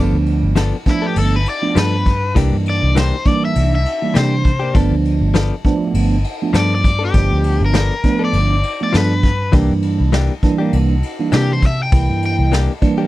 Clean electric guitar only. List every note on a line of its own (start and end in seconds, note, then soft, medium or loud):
0.00 0.16 F3 medium
0.00 0.16 B3 medium
0.00 0.17 D4 medium
0.00 0.17 A4 medium
0.56 0.75 F3 medium
0.56 0.76 B3 medium
0.56 0.76 D4 medium
0.56 0.76 A4 medium
1.02 1.21 B3 soft
1.02 1.20 D4 soft
1.02 1.19 A4 soft
1.75 1.95 F3 medium
1.75 1.95 B3 medium
1.75 1.96 D4 medium
1.75 1.96 A4 medium
2.35 2.55 E3 medium
2.35 2.55 A#3 medium
2.35 2.56 D4 medium
2.35 2.56 G4 medium
2.95 3.15 E3 medium
2.95 3.15 A#3 medium
2.95 3.16 D4 medium
2.95 3.16 G4 medium
4.14 4.34 E3 medium
4.14 4.34 A#3 medium
4.14 4.35 D4 medium
4.14 4.35 G4 medium
4.60 4.75 A#3 soft
4.60 4.74 D4 soft
4.60 4.74 G4 soft
4.74 4.94 F3 medium
4.74 4.94 B3 medium
4.74 4.95 D4 medium
4.74 4.95 A4 medium
5.34 5.54 F3 medium
5.34 5.54 B3 medium
5.34 5.54 D4 medium
5.34 5.55 A4 medium
6.53 6.73 F3 medium
6.53 6.74 B3 medium
6.53 6.74 D4 medium
6.53 6.74 A4 medium
6.99 7.19 B3 soft
6.99 7.18 D4 soft
6.99 7.17 A4 soft
7.74 7.93 F3 medium
7.74 7.94 B3 medium
7.74 7.94 D4 medium
7.74 7.94 A4 medium
8.19 8.38 B3 soft
8.19 8.38 D4 soft
8.19 8.37 A4 medium
8.93 9.12 F3 medium
8.93 9.13 B3 medium
8.93 9.13 D4 medium
8.93 9.14 A4 medium
9.52 9.72 E3 medium
9.52 9.72 A#3 medium
9.52 9.73 D4 medium
9.52 9.73 G4 medium
10.12 10.32 E3 medium
10.12 10.32 A#3 medium
10.12 10.33 D4 loud
10.12 10.33 G4 medium
10.58 10.77 A#3 soft
10.58 10.77 D4 soft
10.58 10.76 G4 medium
11.32 11.52 E3 medium
11.32 11.52 A#3 medium
11.32 11.52 D4 medium
11.32 11.53 G4 medium
12.52 12.71 E3 medium
12.52 12.72 A#3 medium
12.52 12.72 D4 medium
12.52 12.72 G4 medium
12.98 13.07 A#3 soft
12.98 13.07 D4 medium
12.98 13.07 G4 medium